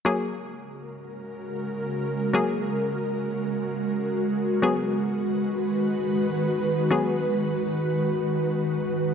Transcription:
0, 0, Header, 1, 3, 480
1, 0, Start_track
1, 0, Key_signature, 6, "major"
1, 0, Tempo, 500000
1, 8776, End_track
2, 0, Start_track
2, 0, Title_t, "Ambient pad"
2, 0, Program_c, 0, 92
2, 49, Note_on_c, 0, 56, 67
2, 50, Note_on_c, 0, 66, 67
2, 50, Note_on_c, 0, 70, 85
2, 51, Note_on_c, 0, 49, 72
2, 4401, Note_off_c, 0, 49, 0
2, 4401, Note_off_c, 0, 70, 0
2, 4439, Note_on_c, 0, 51, 75
2, 4439, Note_on_c, 0, 71, 82
2, 8776, Note_off_c, 0, 51, 0
2, 8776, Note_off_c, 0, 56, 0
2, 8776, Note_off_c, 0, 66, 0
2, 8776, Note_off_c, 0, 71, 0
2, 8776, End_track
3, 0, Start_track
3, 0, Title_t, "Synth pluck"
3, 0, Program_c, 1, 84
3, 47, Note_on_c, 1, 54, 73
3, 52, Note_on_c, 1, 58, 65
3, 56, Note_on_c, 1, 68, 84
3, 2205, Note_off_c, 1, 54, 0
3, 2207, Note_off_c, 1, 58, 0
3, 2210, Note_off_c, 1, 68, 0
3, 2242, Note_on_c, 1, 54, 75
3, 2248, Note_on_c, 1, 58, 64
3, 2252, Note_on_c, 1, 68, 81
3, 4399, Note_off_c, 1, 54, 0
3, 4402, Note_off_c, 1, 58, 0
3, 4405, Note_off_c, 1, 68, 0
3, 4438, Note_on_c, 1, 54, 74
3, 4442, Note_on_c, 1, 59, 69
3, 4447, Note_on_c, 1, 68, 81
3, 6595, Note_off_c, 1, 54, 0
3, 6597, Note_off_c, 1, 59, 0
3, 6599, Note_off_c, 1, 68, 0
3, 6629, Note_on_c, 1, 54, 76
3, 6634, Note_on_c, 1, 59, 67
3, 6638, Note_on_c, 1, 68, 79
3, 8776, Note_off_c, 1, 54, 0
3, 8776, Note_off_c, 1, 59, 0
3, 8776, Note_off_c, 1, 68, 0
3, 8776, End_track
0, 0, End_of_file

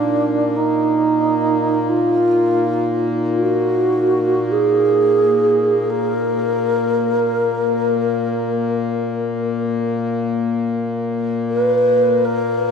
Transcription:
0, 0, Header, 1, 4, 480
1, 0, Start_track
1, 0, Tempo, 500000
1, 12204, End_track
2, 0, Start_track
2, 0, Title_t, "Alto flute"
2, 0, Program_c, 0, 73
2, 0, Note_on_c, 0, 62, 70
2, 541, Note_on_c, 0, 63, 72
2, 555, Note_off_c, 0, 62, 0
2, 1818, Note_on_c, 0, 65, 74
2, 1832, Note_off_c, 0, 63, 0
2, 3002, Note_off_c, 0, 65, 0
2, 3226, Note_on_c, 0, 66, 80
2, 4337, Note_on_c, 0, 68, 90
2, 4351, Note_off_c, 0, 66, 0
2, 5662, Note_on_c, 0, 70, 88
2, 5676, Note_off_c, 0, 68, 0
2, 9248, Note_off_c, 0, 70, 0
2, 11035, Note_on_c, 0, 71, 91
2, 11758, Note_on_c, 0, 70, 87
2, 11772, Note_off_c, 0, 71, 0
2, 12204, Note_off_c, 0, 70, 0
2, 12204, End_track
3, 0, Start_track
3, 0, Title_t, "Glass harmonica"
3, 0, Program_c, 1, 92
3, 0, Note_on_c, 1, 63, 36
3, 3881, Note_on_c, 1, 58, 54
3, 4989, Note_off_c, 1, 63, 0
3, 11653, Note_off_c, 1, 58, 0
3, 12204, End_track
4, 0, Start_track
4, 0, Title_t, "Harmonium"
4, 0, Program_c, 2, 20
4, 0, Note_on_c, 2, 46, 56
4, 12204, Note_off_c, 2, 46, 0
4, 12204, End_track
0, 0, End_of_file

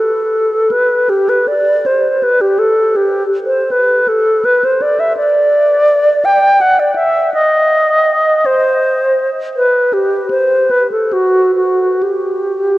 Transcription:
0, 0, Header, 1, 2, 480
1, 0, Start_track
1, 0, Tempo, 756620
1, 446, Time_signature, 3, 2, 24, 8
1, 2362, Tempo, 724638
1, 4282, Tempo, 738007
1, 6682, Tempo, 809717
1, 7162, Tempo, 907716
1, 7642, Tempo, 988468
1, 8008, End_track
2, 0, Start_track
2, 0, Title_t, "Alto flute"
2, 0, Program_c, 0, 73
2, 0, Note_on_c, 0, 69, 55
2, 453, Note_on_c, 0, 71, 56
2, 463, Note_off_c, 0, 69, 0
2, 695, Note_on_c, 0, 67, 61
2, 704, Note_off_c, 0, 71, 0
2, 819, Note_on_c, 0, 71, 57
2, 829, Note_off_c, 0, 67, 0
2, 937, Note_on_c, 0, 74, 66
2, 946, Note_off_c, 0, 71, 0
2, 1180, Note_on_c, 0, 72, 54
2, 1189, Note_off_c, 0, 74, 0
2, 1416, Note_on_c, 0, 71, 66
2, 1426, Note_off_c, 0, 72, 0
2, 1530, Note_on_c, 0, 67, 55
2, 1540, Note_off_c, 0, 71, 0
2, 1643, Note_on_c, 0, 69, 62
2, 1652, Note_off_c, 0, 67, 0
2, 1880, Note_on_c, 0, 67, 62
2, 1889, Note_off_c, 0, 69, 0
2, 2054, Note_off_c, 0, 67, 0
2, 2197, Note_on_c, 0, 72, 69
2, 2358, Note_on_c, 0, 71, 60
2, 2367, Note_off_c, 0, 72, 0
2, 2600, Note_on_c, 0, 69, 68
2, 2610, Note_off_c, 0, 71, 0
2, 2842, Note_on_c, 0, 71, 80
2, 2852, Note_off_c, 0, 69, 0
2, 2972, Note_on_c, 0, 72, 68
2, 2982, Note_off_c, 0, 71, 0
2, 3087, Note_on_c, 0, 74, 73
2, 3097, Note_off_c, 0, 72, 0
2, 3206, Note_on_c, 0, 76, 72
2, 3216, Note_off_c, 0, 74, 0
2, 3315, Note_off_c, 0, 76, 0
2, 3319, Note_on_c, 0, 74, 89
2, 4035, Note_on_c, 0, 79, 81
2, 4045, Note_off_c, 0, 74, 0
2, 4276, Note_on_c, 0, 78, 77
2, 4286, Note_off_c, 0, 79, 0
2, 4396, Note_on_c, 0, 74, 65
2, 4405, Note_off_c, 0, 78, 0
2, 4497, Note_off_c, 0, 74, 0
2, 4501, Note_on_c, 0, 76, 77
2, 4744, Note_off_c, 0, 76, 0
2, 4751, Note_on_c, 0, 75, 80
2, 5475, Note_on_c, 0, 72, 73
2, 5485, Note_off_c, 0, 75, 0
2, 6025, Note_off_c, 0, 72, 0
2, 6196, Note_on_c, 0, 71, 64
2, 6435, Note_on_c, 0, 67, 61
2, 6445, Note_off_c, 0, 71, 0
2, 6673, Note_off_c, 0, 67, 0
2, 6677, Note_on_c, 0, 72, 57
2, 6916, Note_on_c, 0, 71, 56
2, 6925, Note_off_c, 0, 72, 0
2, 7035, Note_off_c, 0, 71, 0
2, 7039, Note_on_c, 0, 69, 48
2, 7165, Note_on_c, 0, 66, 55
2, 7173, Note_off_c, 0, 69, 0
2, 7388, Note_off_c, 0, 66, 0
2, 7391, Note_on_c, 0, 66, 49
2, 7641, Note_on_c, 0, 67, 48
2, 7649, Note_off_c, 0, 66, 0
2, 8008, Note_off_c, 0, 67, 0
2, 8008, End_track
0, 0, End_of_file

